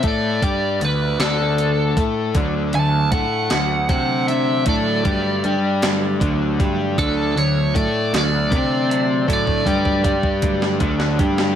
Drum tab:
HH |x-x-x-x-x-x-|x-x-x-x-x-x-|x-x-x-x-x-x-|x-x-x-x-x-x-|
SD |------o-----|------o-----|------o-----|------o-----|
BD |o-o-------o-|o---o---o---|o-o-----o-o-|o---o---o---|

HH |x-x-x-x-x-x-|
SD |-------o-o-o|
BD |ooooooo-o-o-|